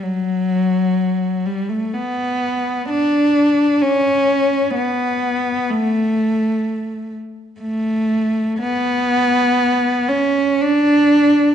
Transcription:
0.03 1.46 F#3 medium
1.46 1.71 G3 medium
1.69 1.94 A3 soft
1.95 2.89 B3 medium
2.90 3.81 D4 medium
3.81 4.75 C#4 medium
4.75 5.69 B3 medium
5.70 7.12 A3 medium
7.60 8.54 A3 medium
8.60 10.09 B3 medium
10.08 10.59 C#4 medium
10.62 11.55 D4 medium

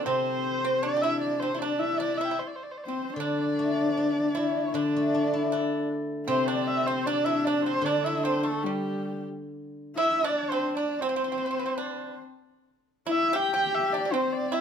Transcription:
0.00 0.84 D3 soft
0.05 2.39 C3 medium
0.05 0.61 C4 medium
0.05 0.86 C4 medium
0.05 0.84 C5 medium
0.65 0.83 C4 medium
0.82 0.95 D4 medium
0.82 1.59 D4 medium
0.82 1.03 D5 medium
0.97 1.03 G4 medium
1.02 1.39 E4 medium
1.02 1.19 E5 medium
1.20 1.41 D5 medium
1.40 1.54 C4 medium
1.40 1.60 C5 medium
1.54 1.61 E4 soft
1.59 1.81 D4 medium
1.59 1.98 D4 medium
1.59 1.80 D5 medium
1.79 2.38 E4 medium
1.79 1.99 E5 medium
1.98 2.18 D4 medium
1.98 2.19 D5 medium
2.17 2.29 E4 medium
2.17 2.27 E5 medium
2.25 2.40 E5 medium
2.25 2.29 G5 medium
2.31 2.39 E4 medium
2.39 2.49 C5 medium
2.47 2.57 D5 medium
2.56 2.64 C5 medium
2.63 2.73 D5 medium
2.71 2.79 C5 medium
2.77 2.85 D5 soft
2.83 3.15 C4 medium
2.83 3.16 C5 medium
2.88 3.17 C4 soft
3.14 4.73 D3 medium
3.14 4.70 D4 medium
3.14 4.73 D5 medium
3.20 3.78 D4 medium
3.59 4.95 A3 soft
3.78 3.92 C#4 medium
3.92 4.33 C4 medium
3.97 5.13 D4 soft
4.35 4.72 E4 medium
4.35 5.32 E4 soft
4.74 7.06 D3 medium
4.74 5.86 D4 medium
4.74 5.48 D4 medium
4.74 5.86 D5 medium
4.96 6.49 A3 soft
5.14 6.68 D4 soft
5.34 6.87 E4 soft
5.52 5.88 D4 medium
5.52 7.07 A4 soft
6.27 7.83 C3 medium
6.27 7.07 C4 medium
6.27 6.46 C4 medium
6.27 6.48 C5 medium
6.47 6.84 D4 medium
6.47 6.68 D5 medium
6.67 6.88 E5 loud
6.86 7.05 C4 medium
6.86 7.07 C5 medium
7.06 7.84 D4 medium
7.06 7.25 D4 medium
7.06 7.26 D5 medium
7.25 7.44 E4 medium
7.25 7.46 E5 medium
7.44 7.64 D4 medium
7.44 7.64 D5 medium
7.64 7.84 C4 medium
7.64 7.86 C5 medium
7.82 10.22 D3 medium
7.82 8.64 D4 medium
7.82 8.06 D5 medium
7.86 8.03 D4 medium
8.04 8.23 E4 medium
8.04 8.25 E5 medium
8.23 8.43 C4 medium
8.23 8.45 C5 medium
8.43 8.62 A3 medium
8.43 8.65 A4 medium
8.63 9.24 G3 medium
8.63 9.21 G3 medium
8.63 9.24 G4 medium
9.95 10.20 E4 medium
9.95 10.22 E4 medium
9.95 10.26 E5 loud
10.22 11.02 D4 medium
10.22 10.48 D4 medium
10.22 10.50 D5 medium
10.49 10.75 C4 medium
10.49 10.74 C5 medium
10.75 11.00 D4 medium
10.75 11.02 D5 medium
11.00 12.17 C4 medium
11.00 11.08 C4 medium
11.00 12.17 C5 medium
11.09 11.15 C4 soft
11.16 11.23 C4 medium
11.24 11.30 C4 soft
11.32 11.36 C4 soft
11.38 11.44 C4 soft
11.46 11.49 C4 medium
11.51 11.58 C4 soft
11.59 11.65 C4 soft
11.66 11.73 C4 medium
11.78 12.14 D4 medium
13.07 13.31 E4 medium
13.07 13.37 E4 medium
13.07 13.37 E5 loud
13.33 13.52 G4 loud
13.33 14.14 G4 medium
13.33 13.55 G5 loud
13.54 13.90 G4 medium
13.54 13.76 G5 loud
13.74 13.94 E5 medium
13.93 14.04 D4 medium
13.93 14.14 D5 medium
14.05 14.13 D4 medium
14.12 14.61 C4 medium
14.12 14.50 C4 medium
14.12 14.34 C5 medium
14.32 14.55 D5 medium
14.52 14.61 E4 medium
14.52 14.61 E5 medium

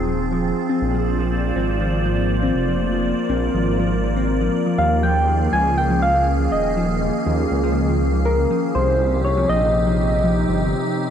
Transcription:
0.00 0.53 D#1 medium
0.00 0.78 F3 medium
0.00 0.78 C4 medium
0.00 4.74 F4 medium
0.00 0.78 G#4 medium
0.07 0.19 F3 medium
0.32 0.44 F3 medium
0.69 0.77 C4 medium
0.82 1.52 A#1 loud
0.82 8.71 A#3 medium
0.82 2.78 C5 medium
0.82 4.74 D5 medium
0.94 1.06 F3 medium
1.19 1.30 F3 medium
1.56 2.51 G#1 loud
1.56 1.64 C4 medium
1.81 1.92 F3 medium
2.06 2.17 F3 medium
2.43 2.51 C4 medium
2.55 3.13 F1 medium
2.68 2.79 F3 medium
2.80 4.76 A#4 medium
2.92 3.04 F3 medium
3.30 3.49 A#1 medium
3.30 3.37 C4 medium
3.54 4.49 G#1 medium
3.54 3.66 F3 medium
3.79 3.91 F3 medium
4.16 4.24 C4 medium
4.41 4.53 F3 medium
4.66 4.78 F3 medium
4.78 5.49 D#2 loud
4.78 8.71 D#3 medium
4.78 8.71 C#4 medium
4.78 8.71 G#4 medium
4.78 5.05 F5 loud
5.03 5.11 F3 medium
5.03 5.52 G5 loud
5.28 5.40 F3 medium
5.53 6.48 C#2 loud
5.53 5.64 F3 medium
5.53 5.76 G#5 loud
5.78 6.01 G5 loud
5.90 5.98 F3 loud
6.02 6.53 F5 loud
6.15 6.26 F3 medium
6.40 6.51 F3 medium
6.52 7.10 D#1 medium
6.52 7.51 D#5 loud
6.77 6.84 F3 medium
7.02 7.13 F3 medium
7.26 7.46 D#2 medium
7.26 7.38 F3 medium
7.51 8.46 C#2 medium
7.64 7.71 F3 loud
7.88 8.00 F3 medium
8.13 8.25 F3 medium
8.26 8.72 A#4 medium
8.50 8.58 F3 loud
8.75 9.45 C2 loud
8.75 11.10 C3 medium
8.75 8.87 F3 medium
8.75 11.10 C4 medium
8.75 11.10 D#4 medium
8.75 11.10 G4 medium
8.75 9.21 C5 loud
9.00 9.11 F3 medium
9.25 9.51 C#5 loud
9.37 9.45 F3 loud
9.49 10.44 A#1 loud
9.49 10.73 D#5 loud
9.62 9.73 F3 medium
9.87 9.98 F3 medium
10.24 10.32 F3 loud
10.49 10.73 G1 medium
10.49 10.60 F3 medium

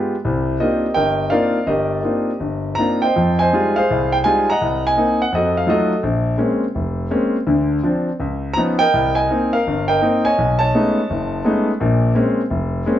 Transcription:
0.00 0.14 G#3 soft
0.00 0.14 B3 soft
0.00 0.14 F4 medium
0.00 0.15 G4 medium
0.25 0.56 C2 medium
0.25 0.56 C3 medium
0.60 0.85 A#3 soft
0.60 0.85 C4 soft
0.60 0.85 D4 soft
0.60 0.85 D#4 soft
0.60 0.85 F4 medium
0.60 1.29 G4 soft
0.60 0.94 A#4 soft
0.60 0.96 D#5 medium
0.94 1.27 G1 medium
0.94 1.31 A#4 medium
0.94 1.65 D#5 medium
0.94 1.32 G5 medium
1.30 1.57 A#3 medium
1.30 1.57 C4 soft
1.30 1.57 D4 soft
1.30 1.57 D#4 soft
1.30 1.57 F4 medium
1.30 1.68 A#4 medium
1.30 2.01 D5 medium
1.30 1.68 F5 medium
1.67 1.99 G1 medium
1.67 2.75 G4 soft
1.67 2.75 A#4 soft
1.67 2.74 D#5 medium
2.03 2.29 A#3 soft
2.03 2.30 C4 soft
2.03 2.30 D4 soft
2.03 2.30 D#4 soft
2.03 2.30 F4 soft
2.40 2.73 G1 medium
2.75 3.05 A#3 soft
2.75 3.05 C4 soft
2.75 3.05 D4 soft
2.75 3.05 D#4 soft
2.75 3.05 F4 medium
2.75 3.00 A#5 medium
3.02 3.39 C5 medium
3.02 3.40 D#5 medium
3.02 3.41 G5 medium
3.16 3.48 F2 medium
3.16 3.48 F3 medium
3.39 3.76 C5 medium
3.39 4.10 D#5 medium
3.39 3.74 G#5 medium
3.53 3.78 G3 medium
3.53 3.79 G#3 soft
3.53 3.79 D#4 soft
3.53 3.79 F4 medium
3.76 4.45 G#4 medium
3.76 4.45 C5 medium
3.76 4.14 F5 medium
3.90 4.21 C2 medium
4.12 4.17 G5 medium
4.24 4.50 G3 medium
4.24 4.50 G#3 medium
4.24 4.50 D#4 medium
4.24 4.50 F4 medium
4.24 4.49 G#5 medium
4.50 4.85 D#5 medium
4.50 5.18 F#5 medium
4.50 4.86 A#5 medium
4.61 4.92 C2 medium
4.87 5.30 D#5 medium
4.87 5.19 G#5 loud
4.97 5.22 A#3 medium
4.97 5.22 C4 soft
4.97 5.22 D#4 medium
5.22 5.32 F#5 medium
5.33 5.63 F2 medium
5.33 5.68 F#4 soft
5.33 5.68 A4 soft
5.33 5.57 D#5 medium
5.57 5.69 F5 medium
5.67 5.92 F#3 medium
5.67 5.92 A3 medium
5.67 5.92 D#4 medium
5.67 5.92 F4 medium
5.67 6.02 F#4 medium
5.67 6.02 A4 medium
5.67 5.96 D#5 medium
6.03 6.34 A#1 medium
6.38 6.63 G#3 medium
6.38 6.63 A#3 medium
6.38 6.63 C4 soft
6.38 6.63 C#4 medium
6.75 7.06 F1 medium
7.10 7.35 G#3 medium
7.10 7.35 A#3 medium
7.10 7.35 C4 medium
7.10 7.35 C#4 medium
7.47 7.78 D2 medium
7.47 7.78 D3 medium
7.83 8.08 F3 medium
7.83 8.08 C4 medium
7.83 8.09 D4 medium
8.20 8.51 C#2 medium
8.54 8.82 F3 medium
8.54 8.82 C#4 medium
8.54 8.59 A#5 loud
8.58 8.82 B3 medium
8.58 8.83 D#4 medium
8.79 9.49 A#4 medium
8.79 9.15 D#5 medium
8.79 9.17 G5 loud
8.94 9.25 C2 medium
9.15 9.85 D#5 medium
9.15 9.50 G#5 medium
9.30 9.55 A#3 medium
9.30 9.55 C4 soft
9.30 9.55 D#4 medium
9.53 9.88 A#4 medium
9.53 9.87 F5 medium
9.67 9.98 G1 medium
9.88 10.35 A#4 medium
9.88 10.25 D#5 medium
9.88 10.22 G5 medium
10.02 10.27 A#3 medium
10.02 10.27 C4 medium
10.02 10.27 D#4 medium
10.25 10.59 C#5 medium
10.25 10.59 D#5 medium
10.25 10.59 G#5 loud
10.38 10.69 B1 medium
10.59 11.64 C#5 medium
10.59 11.64 D#5 medium
10.59 11.63 A5 medium
10.75 10.99 G#3 medium
10.75 10.99 A3 medium
10.75 10.99 B3 medium
10.75 10.99 C#4 medium
10.75 10.99 D#4 medium
11.10 11.41 F#1 medium
11.45 11.69 G#3 medium
11.45 11.70 A3 medium
11.45 11.70 B3 medium
11.45 11.70 C#4 medium
11.45 11.70 D#4 medium
11.80 12.11 A#1 medium
11.80 12.11 A#2 medium
12.15 12.40 G#3 medium
12.15 12.40 A#3 medium
12.15 12.40 C4 medium
12.15 12.40 C#4 medium
12.50 12.82 F1 medium
12.86 12.99 G#3 medium
12.86 12.99 A#3 medium
12.86 12.99 C4 medium
12.86 12.99 C#4 medium

